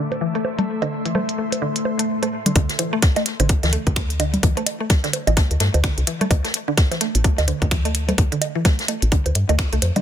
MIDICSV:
0, 0, Header, 1, 5, 480
1, 0, Start_track
1, 0, Tempo, 468750
1, 697, Time_signature, 4, 2, 24, 8
1, 10257, End_track
2, 0, Start_track
2, 0, Title_t, "Ambient pad"
2, 0, Program_c, 0, 92
2, 0, Note_on_c, 0, 57, 81
2, 0, Note_on_c, 0, 69, 75
2, 0, Note_on_c, 0, 76, 86
2, 0, Note_on_c, 0, 84, 86
2, 2617, Note_off_c, 0, 57, 0
2, 2617, Note_off_c, 0, 69, 0
2, 2617, Note_off_c, 0, 84, 0
2, 2618, Note_off_c, 0, 76, 0
2, 10257, End_track
3, 0, Start_track
3, 0, Title_t, "Synth arpeggio sound"
3, 0, Program_c, 1, 84
3, 216, Note_on_c, 1, 52, 81
3, 272, Note_off_c, 1, 52, 0
3, 359, Note_on_c, 1, 57, 94
3, 385, Note_off_c, 1, 57, 0
3, 599, Note_on_c, 1, 57, 74
3, 637, Note_off_c, 1, 57, 0
3, 838, Note_on_c, 1, 50, 98
3, 865, Note_off_c, 1, 50, 0
3, 1079, Note_on_c, 1, 52, 74
3, 1118, Note_off_c, 1, 52, 0
3, 1176, Note_on_c, 1, 57, 99
3, 1214, Note_off_c, 1, 57, 0
3, 1415, Note_on_c, 1, 57, 70
3, 1472, Note_off_c, 1, 57, 0
3, 1657, Note_on_c, 1, 50, 103
3, 1694, Note_off_c, 1, 50, 0
3, 2038, Note_on_c, 1, 57, 77
3, 2059, Note_off_c, 1, 57, 0
3, 2278, Note_on_c, 1, 57, 97
3, 2299, Note_off_c, 1, 57, 0
3, 2519, Note_on_c, 1, 50, 73
3, 2545, Note_off_c, 1, 50, 0
3, 2617, Note_on_c, 1, 50, 102
3, 2654, Note_off_c, 1, 50, 0
3, 2856, Note_on_c, 1, 52, 77
3, 2912, Note_off_c, 1, 52, 0
3, 2999, Note_on_c, 1, 57, 103
3, 3025, Note_off_c, 1, 57, 0
3, 3238, Note_on_c, 1, 57, 78
3, 3277, Note_off_c, 1, 57, 0
3, 3479, Note_on_c, 1, 50, 105
3, 3505, Note_off_c, 1, 50, 0
3, 3719, Note_on_c, 1, 52, 76
3, 3757, Note_off_c, 1, 52, 0
3, 3817, Note_on_c, 1, 57, 101
3, 3854, Note_off_c, 1, 57, 0
3, 4056, Note_on_c, 1, 57, 86
3, 4112, Note_off_c, 1, 57, 0
3, 4297, Note_on_c, 1, 50, 101
3, 4334, Note_off_c, 1, 50, 0
3, 4536, Note_on_c, 1, 52, 84
3, 4592, Note_off_c, 1, 52, 0
3, 4679, Note_on_c, 1, 57, 104
3, 4705, Note_off_c, 1, 57, 0
3, 4920, Note_on_c, 1, 57, 78
3, 4958, Note_off_c, 1, 57, 0
3, 5158, Note_on_c, 1, 50, 104
3, 5185, Note_off_c, 1, 50, 0
3, 5398, Note_on_c, 1, 52, 79
3, 5437, Note_off_c, 1, 52, 0
3, 5497, Note_on_c, 1, 57, 107
3, 5534, Note_off_c, 1, 57, 0
3, 5736, Note_on_c, 1, 57, 77
3, 5792, Note_off_c, 1, 57, 0
3, 5976, Note_on_c, 1, 50, 108
3, 6014, Note_off_c, 1, 50, 0
3, 6216, Note_on_c, 1, 52, 77
3, 6272, Note_off_c, 1, 52, 0
3, 6359, Note_on_c, 1, 57, 103
3, 6385, Note_off_c, 1, 57, 0
3, 6599, Note_on_c, 1, 57, 77
3, 6638, Note_off_c, 1, 57, 0
3, 6840, Note_on_c, 1, 50, 103
3, 6865, Note_off_c, 1, 50, 0
3, 7079, Note_on_c, 1, 52, 78
3, 7118, Note_off_c, 1, 52, 0
3, 7177, Note_on_c, 1, 57, 100
3, 7214, Note_off_c, 1, 57, 0
3, 7417, Note_on_c, 1, 57, 87
3, 7473, Note_off_c, 1, 57, 0
3, 7657, Note_on_c, 1, 50, 101
3, 7694, Note_off_c, 1, 50, 0
3, 7897, Note_on_c, 1, 52, 85
3, 7953, Note_off_c, 1, 52, 0
3, 8040, Note_on_c, 1, 57, 100
3, 8065, Note_off_c, 1, 57, 0
3, 8280, Note_on_c, 1, 57, 81
3, 8318, Note_off_c, 1, 57, 0
3, 8519, Note_on_c, 1, 50, 104
3, 8545, Note_off_c, 1, 50, 0
3, 8760, Note_on_c, 1, 52, 77
3, 8798, Note_off_c, 1, 52, 0
3, 8857, Note_on_c, 1, 57, 102
3, 8894, Note_off_c, 1, 57, 0
3, 9098, Note_on_c, 1, 57, 74
3, 9153, Note_off_c, 1, 57, 0
3, 9337, Note_on_c, 1, 50, 108
3, 9374, Note_off_c, 1, 50, 0
3, 9719, Note_on_c, 1, 57, 80
3, 9739, Note_off_c, 1, 57, 0
3, 9960, Note_on_c, 1, 57, 103
3, 9981, Note_off_c, 1, 57, 0
3, 10200, Note_on_c, 1, 50, 80
3, 10225, Note_off_c, 1, 50, 0
3, 10257, End_track
4, 0, Start_track
4, 0, Title_t, "FM bass"
4, 0, Program_c, 2, 39
4, 2618, Note_on_c, 2, 38, 100
4, 2709, Note_off_c, 2, 38, 0
4, 3480, Note_on_c, 2, 33, 93
4, 3618, Note_off_c, 2, 33, 0
4, 3720, Note_on_c, 2, 38, 97
4, 3858, Note_off_c, 2, 38, 0
4, 3960, Note_on_c, 2, 38, 104
4, 4482, Note_off_c, 2, 38, 0
4, 4537, Note_on_c, 2, 38, 99
4, 4629, Note_off_c, 2, 38, 0
4, 5401, Note_on_c, 2, 33, 97
4, 5538, Note_off_c, 2, 33, 0
4, 5642, Note_on_c, 2, 38, 97
4, 5703, Note_off_c, 2, 38, 0
4, 5739, Note_on_c, 2, 43, 91
4, 5830, Note_off_c, 2, 43, 0
4, 5882, Note_on_c, 2, 38, 103
4, 6019, Note_off_c, 2, 38, 0
4, 6122, Note_on_c, 2, 36, 106
4, 6183, Note_off_c, 2, 36, 0
4, 6457, Note_on_c, 2, 38, 99
4, 6549, Note_off_c, 2, 38, 0
4, 7321, Note_on_c, 2, 33, 97
4, 7459, Note_off_c, 2, 33, 0
4, 7562, Note_on_c, 2, 38, 97
4, 7699, Note_off_c, 2, 38, 0
4, 7800, Note_on_c, 2, 38, 100
4, 8322, Note_off_c, 2, 38, 0
4, 8378, Note_on_c, 2, 38, 98
4, 8469, Note_off_c, 2, 38, 0
4, 9241, Note_on_c, 2, 33, 96
4, 9379, Note_off_c, 2, 33, 0
4, 9482, Note_on_c, 2, 38, 97
4, 9543, Note_off_c, 2, 38, 0
4, 9579, Note_on_c, 2, 43, 90
4, 9670, Note_off_c, 2, 43, 0
4, 9722, Note_on_c, 2, 38, 105
4, 9859, Note_off_c, 2, 38, 0
4, 9961, Note_on_c, 2, 36, 99
4, 10023, Note_off_c, 2, 36, 0
4, 10059, Note_on_c, 2, 41, 85
4, 10150, Note_off_c, 2, 41, 0
4, 10257, End_track
5, 0, Start_track
5, 0, Title_t, "Drums"
5, 119, Note_on_c, 9, 61, 42
5, 120, Note_on_c, 9, 42, 46
5, 221, Note_off_c, 9, 61, 0
5, 223, Note_off_c, 9, 42, 0
5, 360, Note_on_c, 9, 42, 27
5, 457, Note_on_c, 9, 61, 44
5, 462, Note_off_c, 9, 42, 0
5, 559, Note_off_c, 9, 61, 0
5, 599, Note_on_c, 9, 64, 85
5, 600, Note_on_c, 9, 42, 46
5, 702, Note_off_c, 9, 42, 0
5, 702, Note_off_c, 9, 64, 0
5, 840, Note_on_c, 9, 60, 56
5, 840, Note_on_c, 9, 61, 41
5, 841, Note_on_c, 9, 42, 26
5, 942, Note_off_c, 9, 60, 0
5, 942, Note_off_c, 9, 61, 0
5, 943, Note_off_c, 9, 42, 0
5, 1081, Note_on_c, 9, 42, 46
5, 1177, Note_on_c, 9, 61, 43
5, 1177, Note_on_c, 9, 64, 85
5, 1183, Note_off_c, 9, 42, 0
5, 1279, Note_off_c, 9, 61, 0
5, 1279, Note_off_c, 9, 64, 0
5, 1320, Note_on_c, 9, 42, 38
5, 1423, Note_off_c, 9, 42, 0
5, 1560, Note_on_c, 9, 61, 42
5, 1561, Note_on_c, 9, 42, 46
5, 1662, Note_off_c, 9, 61, 0
5, 1663, Note_off_c, 9, 42, 0
5, 1801, Note_on_c, 9, 42, 36
5, 1897, Note_on_c, 9, 61, 43
5, 1903, Note_off_c, 9, 42, 0
5, 1999, Note_off_c, 9, 61, 0
5, 2041, Note_on_c, 9, 42, 46
5, 2143, Note_off_c, 9, 42, 0
5, 2280, Note_on_c, 9, 42, 26
5, 2280, Note_on_c, 9, 61, 42
5, 2382, Note_off_c, 9, 61, 0
5, 2383, Note_off_c, 9, 42, 0
5, 2519, Note_on_c, 9, 64, 82
5, 2520, Note_on_c, 9, 42, 44
5, 2616, Note_off_c, 9, 42, 0
5, 2616, Note_on_c, 9, 42, 88
5, 2617, Note_off_c, 9, 42, 0
5, 2617, Note_on_c, 9, 36, 115
5, 2617, Note_on_c, 9, 42, 65
5, 2617, Note_on_c, 9, 60, 42
5, 2621, Note_off_c, 9, 64, 0
5, 2719, Note_off_c, 9, 60, 0
5, 2720, Note_off_c, 9, 36, 0
5, 2720, Note_off_c, 9, 42, 0
5, 2755, Note_on_c, 9, 38, 41
5, 2760, Note_on_c, 9, 42, 32
5, 2854, Note_off_c, 9, 42, 0
5, 2854, Note_on_c, 9, 42, 64
5, 2856, Note_off_c, 9, 42, 0
5, 2856, Note_on_c, 9, 42, 96
5, 2857, Note_off_c, 9, 38, 0
5, 2857, Note_on_c, 9, 61, 46
5, 2959, Note_off_c, 9, 42, 0
5, 2959, Note_off_c, 9, 61, 0
5, 3097, Note_on_c, 9, 42, 70
5, 3098, Note_on_c, 9, 36, 114
5, 3099, Note_off_c, 9, 42, 0
5, 3099, Note_on_c, 9, 42, 82
5, 3100, Note_on_c, 9, 38, 111
5, 3200, Note_off_c, 9, 36, 0
5, 3201, Note_off_c, 9, 42, 0
5, 3202, Note_off_c, 9, 38, 0
5, 3240, Note_on_c, 9, 38, 36
5, 3240, Note_on_c, 9, 42, 31
5, 3240, Note_on_c, 9, 60, 83
5, 3335, Note_off_c, 9, 38, 0
5, 3335, Note_on_c, 9, 38, 43
5, 3337, Note_off_c, 9, 42, 0
5, 3337, Note_on_c, 9, 42, 93
5, 3342, Note_off_c, 9, 42, 0
5, 3342, Note_off_c, 9, 60, 0
5, 3342, Note_on_c, 9, 42, 70
5, 3437, Note_off_c, 9, 38, 0
5, 3444, Note_off_c, 9, 42, 0
5, 3479, Note_on_c, 9, 42, 43
5, 3480, Note_on_c, 9, 61, 45
5, 3575, Note_off_c, 9, 42, 0
5, 3575, Note_on_c, 9, 42, 97
5, 3576, Note_off_c, 9, 42, 0
5, 3576, Note_on_c, 9, 42, 68
5, 3578, Note_on_c, 9, 36, 116
5, 3583, Note_off_c, 9, 61, 0
5, 3679, Note_off_c, 9, 42, 0
5, 3680, Note_off_c, 9, 36, 0
5, 3720, Note_on_c, 9, 42, 31
5, 3720, Note_on_c, 9, 60, 41
5, 3725, Note_on_c, 9, 38, 55
5, 3817, Note_off_c, 9, 42, 0
5, 3817, Note_on_c, 9, 42, 97
5, 3822, Note_off_c, 9, 60, 0
5, 3827, Note_off_c, 9, 38, 0
5, 3919, Note_off_c, 9, 42, 0
5, 3960, Note_on_c, 9, 36, 61
5, 3960, Note_on_c, 9, 42, 30
5, 4053, Note_on_c, 9, 38, 110
5, 4057, Note_off_c, 9, 36, 0
5, 4057, Note_on_c, 9, 36, 122
5, 4057, Note_on_c, 9, 61, 45
5, 4058, Note_off_c, 9, 42, 0
5, 4058, Note_on_c, 9, 26, 111
5, 4058, Note_on_c, 9, 42, 67
5, 4156, Note_off_c, 9, 38, 0
5, 4160, Note_off_c, 9, 26, 0
5, 4160, Note_off_c, 9, 36, 0
5, 4160, Note_off_c, 9, 42, 0
5, 4160, Note_off_c, 9, 61, 0
5, 4201, Note_on_c, 9, 42, 44
5, 4214, Note_off_c, 9, 42, 0
5, 4214, Note_on_c, 9, 42, 44
5, 4297, Note_on_c, 9, 60, 81
5, 4298, Note_off_c, 9, 42, 0
5, 4298, Note_on_c, 9, 42, 95
5, 4299, Note_off_c, 9, 42, 0
5, 4299, Note_on_c, 9, 42, 66
5, 4400, Note_off_c, 9, 60, 0
5, 4401, Note_off_c, 9, 42, 0
5, 4437, Note_on_c, 9, 42, 44
5, 4439, Note_on_c, 9, 64, 97
5, 4441, Note_off_c, 9, 42, 0
5, 4441, Note_on_c, 9, 42, 29
5, 4537, Note_off_c, 9, 42, 0
5, 4537, Note_on_c, 9, 42, 91
5, 4538, Note_off_c, 9, 42, 0
5, 4538, Note_on_c, 9, 36, 122
5, 4538, Note_on_c, 9, 42, 64
5, 4542, Note_off_c, 9, 64, 0
5, 4640, Note_off_c, 9, 36, 0
5, 4641, Note_off_c, 9, 42, 0
5, 4679, Note_on_c, 9, 61, 47
5, 4681, Note_on_c, 9, 42, 31
5, 4773, Note_off_c, 9, 42, 0
5, 4773, Note_on_c, 9, 42, 68
5, 4776, Note_on_c, 9, 60, 41
5, 4777, Note_off_c, 9, 42, 0
5, 4777, Note_on_c, 9, 42, 96
5, 4782, Note_off_c, 9, 61, 0
5, 4879, Note_off_c, 9, 60, 0
5, 4880, Note_off_c, 9, 42, 0
5, 5013, Note_on_c, 9, 42, 83
5, 5014, Note_on_c, 9, 38, 105
5, 5016, Note_on_c, 9, 64, 101
5, 5018, Note_off_c, 9, 42, 0
5, 5018, Note_on_c, 9, 36, 122
5, 5018, Note_on_c, 9, 42, 65
5, 5117, Note_off_c, 9, 38, 0
5, 5119, Note_off_c, 9, 64, 0
5, 5120, Note_off_c, 9, 36, 0
5, 5120, Note_off_c, 9, 42, 0
5, 5161, Note_on_c, 9, 42, 31
5, 5164, Note_on_c, 9, 38, 59
5, 5257, Note_off_c, 9, 42, 0
5, 5257, Note_on_c, 9, 42, 68
5, 5257, Note_on_c, 9, 61, 45
5, 5258, Note_off_c, 9, 42, 0
5, 5258, Note_on_c, 9, 42, 95
5, 5267, Note_off_c, 9, 38, 0
5, 5359, Note_off_c, 9, 61, 0
5, 5360, Note_off_c, 9, 42, 0
5, 5399, Note_on_c, 9, 60, 78
5, 5401, Note_on_c, 9, 42, 42
5, 5497, Note_off_c, 9, 42, 0
5, 5497, Note_on_c, 9, 42, 89
5, 5498, Note_off_c, 9, 42, 0
5, 5498, Note_on_c, 9, 36, 127
5, 5498, Note_on_c, 9, 42, 63
5, 5501, Note_off_c, 9, 60, 0
5, 5506, Note_on_c, 9, 38, 98
5, 5600, Note_off_c, 9, 36, 0
5, 5600, Note_off_c, 9, 42, 0
5, 5608, Note_off_c, 9, 38, 0
5, 5641, Note_on_c, 9, 42, 30
5, 5731, Note_off_c, 9, 42, 0
5, 5731, Note_on_c, 9, 42, 78
5, 5737, Note_on_c, 9, 38, 100
5, 5738, Note_off_c, 9, 42, 0
5, 5738, Note_on_c, 9, 42, 98
5, 5840, Note_off_c, 9, 38, 0
5, 5840, Note_off_c, 9, 42, 0
5, 5880, Note_on_c, 9, 60, 39
5, 5880, Note_on_c, 9, 61, 46
5, 5881, Note_on_c, 9, 42, 30
5, 5977, Note_off_c, 9, 42, 0
5, 5977, Note_on_c, 9, 26, 112
5, 5977, Note_on_c, 9, 42, 67
5, 5978, Note_on_c, 9, 36, 124
5, 5982, Note_off_c, 9, 60, 0
5, 5982, Note_off_c, 9, 61, 0
5, 5982, Note_on_c, 9, 38, 110
5, 5985, Note_off_c, 9, 42, 0
5, 5985, Note_on_c, 9, 42, 82
5, 6079, Note_off_c, 9, 26, 0
5, 6080, Note_off_c, 9, 36, 0
5, 6084, Note_off_c, 9, 38, 0
5, 6087, Note_off_c, 9, 42, 0
5, 6121, Note_on_c, 9, 42, 44
5, 6218, Note_off_c, 9, 42, 0
5, 6218, Note_on_c, 9, 42, 99
5, 6221, Note_off_c, 9, 42, 0
5, 6221, Note_on_c, 9, 42, 68
5, 6323, Note_off_c, 9, 42, 0
5, 6360, Note_on_c, 9, 42, 30
5, 6360, Note_on_c, 9, 64, 98
5, 6457, Note_on_c, 9, 36, 124
5, 6457, Note_on_c, 9, 60, 79
5, 6457, Note_on_c, 9, 61, 48
5, 6458, Note_off_c, 9, 42, 0
5, 6458, Note_on_c, 9, 42, 62
5, 6462, Note_off_c, 9, 42, 0
5, 6462, Note_off_c, 9, 64, 0
5, 6462, Note_on_c, 9, 42, 96
5, 6559, Note_off_c, 9, 60, 0
5, 6559, Note_off_c, 9, 61, 0
5, 6560, Note_off_c, 9, 36, 0
5, 6565, Note_off_c, 9, 42, 0
5, 6600, Note_on_c, 9, 38, 46
5, 6601, Note_on_c, 9, 42, 30
5, 6697, Note_off_c, 9, 42, 0
5, 6697, Note_on_c, 9, 42, 98
5, 6701, Note_off_c, 9, 42, 0
5, 6701, Note_on_c, 9, 42, 73
5, 6702, Note_off_c, 9, 38, 0
5, 6804, Note_off_c, 9, 42, 0
5, 6936, Note_on_c, 9, 38, 127
5, 6937, Note_on_c, 9, 42, 81
5, 6938, Note_off_c, 9, 42, 0
5, 6938, Note_on_c, 9, 36, 127
5, 6938, Note_on_c, 9, 42, 63
5, 6938, Note_on_c, 9, 60, 38
5, 7039, Note_off_c, 9, 38, 0
5, 7040, Note_off_c, 9, 36, 0
5, 7040, Note_off_c, 9, 60, 0
5, 7041, Note_off_c, 9, 42, 0
5, 7080, Note_on_c, 9, 61, 48
5, 7082, Note_on_c, 9, 42, 30
5, 7083, Note_on_c, 9, 38, 40
5, 7174, Note_off_c, 9, 42, 0
5, 7174, Note_on_c, 9, 42, 71
5, 7177, Note_off_c, 9, 38, 0
5, 7177, Note_off_c, 9, 42, 0
5, 7177, Note_on_c, 9, 38, 45
5, 7177, Note_on_c, 9, 42, 95
5, 7182, Note_off_c, 9, 61, 0
5, 7279, Note_off_c, 9, 38, 0
5, 7280, Note_off_c, 9, 42, 0
5, 7321, Note_on_c, 9, 42, 40
5, 7414, Note_off_c, 9, 42, 0
5, 7414, Note_on_c, 9, 42, 86
5, 7418, Note_off_c, 9, 42, 0
5, 7418, Note_on_c, 9, 36, 125
5, 7418, Note_on_c, 9, 42, 63
5, 7520, Note_off_c, 9, 36, 0
5, 7521, Note_off_c, 9, 42, 0
5, 7560, Note_on_c, 9, 60, 81
5, 7561, Note_on_c, 9, 38, 54
5, 7561, Note_on_c, 9, 42, 29
5, 7657, Note_on_c, 9, 61, 48
5, 7658, Note_off_c, 9, 42, 0
5, 7658, Note_on_c, 9, 42, 100
5, 7661, Note_off_c, 9, 42, 0
5, 7661, Note_on_c, 9, 42, 67
5, 7662, Note_off_c, 9, 60, 0
5, 7663, Note_off_c, 9, 38, 0
5, 7759, Note_off_c, 9, 61, 0
5, 7763, Note_off_c, 9, 42, 0
5, 7801, Note_on_c, 9, 36, 65
5, 7801, Note_on_c, 9, 42, 28
5, 7898, Note_off_c, 9, 36, 0
5, 7898, Note_off_c, 9, 42, 0
5, 7898, Note_on_c, 9, 26, 106
5, 7898, Note_on_c, 9, 36, 127
5, 7898, Note_on_c, 9, 42, 62
5, 7899, Note_off_c, 9, 42, 0
5, 7899, Note_on_c, 9, 42, 87
5, 7900, Note_on_c, 9, 38, 116
5, 8000, Note_off_c, 9, 26, 0
5, 8001, Note_off_c, 9, 36, 0
5, 8001, Note_off_c, 9, 42, 0
5, 8002, Note_off_c, 9, 38, 0
5, 8036, Note_on_c, 9, 42, 50
5, 8040, Note_on_c, 9, 60, 40
5, 8041, Note_off_c, 9, 42, 0
5, 8041, Note_on_c, 9, 42, 43
5, 8134, Note_off_c, 9, 42, 0
5, 8134, Note_on_c, 9, 42, 70
5, 8138, Note_off_c, 9, 42, 0
5, 8138, Note_on_c, 9, 42, 101
5, 8142, Note_off_c, 9, 60, 0
5, 8240, Note_off_c, 9, 42, 0
5, 8277, Note_on_c, 9, 42, 44
5, 8279, Note_on_c, 9, 61, 47
5, 8279, Note_on_c, 9, 64, 94
5, 8280, Note_off_c, 9, 42, 0
5, 8280, Note_on_c, 9, 42, 29
5, 8376, Note_off_c, 9, 42, 0
5, 8376, Note_on_c, 9, 42, 88
5, 8378, Note_off_c, 9, 42, 0
5, 8378, Note_on_c, 9, 36, 122
5, 8378, Note_on_c, 9, 42, 62
5, 8382, Note_off_c, 9, 61, 0
5, 8382, Note_off_c, 9, 64, 0
5, 8480, Note_off_c, 9, 36, 0
5, 8480, Note_off_c, 9, 42, 0
5, 8521, Note_on_c, 9, 42, 29
5, 8616, Note_on_c, 9, 60, 77
5, 8618, Note_off_c, 9, 42, 0
5, 8618, Note_on_c, 9, 42, 100
5, 8621, Note_off_c, 9, 42, 0
5, 8621, Note_on_c, 9, 42, 66
5, 8719, Note_off_c, 9, 60, 0
5, 8723, Note_off_c, 9, 42, 0
5, 8857, Note_on_c, 9, 61, 49
5, 8857, Note_on_c, 9, 64, 94
5, 8858, Note_on_c, 9, 36, 125
5, 8858, Note_on_c, 9, 42, 62
5, 8860, Note_on_c, 9, 38, 114
5, 8865, Note_off_c, 9, 42, 0
5, 8865, Note_on_c, 9, 42, 86
5, 8959, Note_off_c, 9, 61, 0
5, 8959, Note_off_c, 9, 64, 0
5, 8960, Note_off_c, 9, 36, 0
5, 8962, Note_off_c, 9, 38, 0
5, 8967, Note_off_c, 9, 42, 0
5, 9000, Note_on_c, 9, 42, 28
5, 9008, Note_on_c, 9, 38, 55
5, 9097, Note_off_c, 9, 42, 0
5, 9097, Note_on_c, 9, 42, 94
5, 9098, Note_on_c, 9, 60, 37
5, 9103, Note_off_c, 9, 42, 0
5, 9103, Note_on_c, 9, 42, 67
5, 9110, Note_off_c, 9, 38, 0
5, 9201, Note_off_c, 9, 60, 0
5, 9206, Note_off_c, 9, 42, 0
5, 9240, Note_on_c, 9, 42, 42
5, 9338, Note_off_c, 9, 42, 0
5, 9338, Note_on_c, 9, 36, 125
5, 9338, Note_on_c, 9, 42, 61
5, 9343, Note_off_c, 9, 42, 0
5, 9343, Note_on_c, 9, 42, 87
5, 9440, Note_off_c, 9, 36, 0
5, 9445, Note_off_c, 9, 42, 0
5, 9480, Note_on_c, 9, 42, 28
5, 9480, Note_on_c, 9, 61, 46
5, 9571, Note_off_c, 9, 42, 0
5, 9571, Note_on_c, 9, 42, 63
5, 9578, Note_off_c, 9, 42, 0
5, 9578, Note_on_c, 9, 42, 97
5, 9583, Note_off_c, 9, 61, 0
5, 9680, Note_off_c, 9, 42, 0
5, 9720, Note_on_c, 9, 42, 27
5, 9720, Note_on_c, 9, 60, 73
5, 9812, Note_on_c, 9, 38, 117
5, 9817, Note_off_c, 9, 42, 0
5, 9817, Note_on_c, 9, 26, 105
5, 9817, Note_on_c, 9, 42, 60
5, 9818, Note_on_c, 9, 36, 125
5, 9820, Note_off_c, 9, 42, 0
5, 9820, Note_on_c, 9, 42, 79
5, 9822, Note_off_c, 9, 60, 0
5, 9915, Note_off_c, 9, 38, 0
5, 9919, Note_off_c, 9, 26, 0
5, 9920, Note_off_c, 9, 36, 0
5, 9922, Note_off_c, 9, 42, 0
5, 9960, Note_on_c, 9, 42, 41
5, 10056, Note_off_c, 9, 42, 0
5, 10056, Note_on_c, 9, 42, 72
5, 10057, Note_off_c, 9, 42, 0
5, 10057, Note_on_c, 9, 42, 97
5, 10057, Note_on_c, 9, 61, 48
5, 10159, Note_off_c, 9, 42, 0
5, 10160, Note_off_c, 9, 61, 0
5, 10200, Note_on_c, 9, 42, 27
5, 10201, Note_on_c, 9, 60, 38
5, 10201, Note_on_c, 9, 64, 92
5, 10257, Note_off_c, 9, 42, 0
5, 10257, Note_off_c, 9, 60, 0
5, 10257, Note_off_c, 9, 64, 0
5, 10257, End_track
0, 0, End_of_file